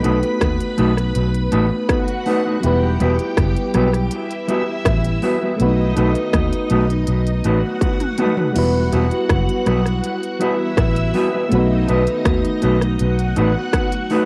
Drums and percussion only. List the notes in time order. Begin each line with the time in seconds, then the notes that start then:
0.04 closed hi-hat
0.23 closed hi-hat
0.41 kick, cross-stick, closed hi-hat
0.60 closed hi-hat
0.78 closed hi-hat
0.97 cross-stick, closed hi-hat
1.15 closed hi-hat
1.34 closed hi-hat
1.52 closed hi-hat
1.89 kick, cross-stick, closed hi-hat
2.08 closed hi-hat
2.26 open hi-hat
2.63 closed hi-hat
3.00 closed hi-hat
3.19 closed hi-hat
3.37 kick, cross-stick, closed hi-hat
3.57 closed hi-hat
3.74 cross-stick, closed hi-hat
3.93 cross-stick, closed hi-hat
4.11 closed hi-hat
4.31 closed hi-hat
4.49 closed hi-hat
4.85 kick, cross-stick, closed hi-hat
5.04 closed hi-hat
5.22 open hi-hat
5.60 closed hi-hat
5.97 closed hi-hat
6.15 closed hi-hat
6.33 kick, cross-stick, closed hi-hat
6.53 closed hi-hat
6.70 closed hi-hat
6.90 closed hi-hat
7.07 closed hi-hat
7.27 closed hi-hat
7.44 closed hi-hat
7.81 kick, closed hi-hat, high tom
8.00 closed hi-hat, mid tom
8.18 closed hi-hat, mid tom
8.37 floor tom
8.56 closed hi-hat, crash
8.92 closed hi-hat
9.11 closed hi-hat
9.29 kick, cross-stick, closed hi-hat
9.49 closed hi-hat
9.66 cross-stick, closed hi-hat
9.86 cross-stick, closed hi-hat
10.04 closed hi-hat
10.23 closed hi-hat
10.41 closed hi-hat
10.77 kick, cross-stick, closed hi-hat
10.96 closed hi-hat
11.14 open hi-hat
11.52 closed hi-hat
11.88 closed hi-hat
12.07 closed hi-hat
12.25 kick, cross-stick, closed hi-hat
12.45 closed hi-hat
12.62 closed hi-hat
12.81 cross-stick, closed hi-hat
12.99 closed hi-hat
13.19 closed hi-hat
13.36 closed hi-hat
13.73 kick, cross-stick, closed hi-hat
13.92 closed hi-hat
14.10 open hi-hat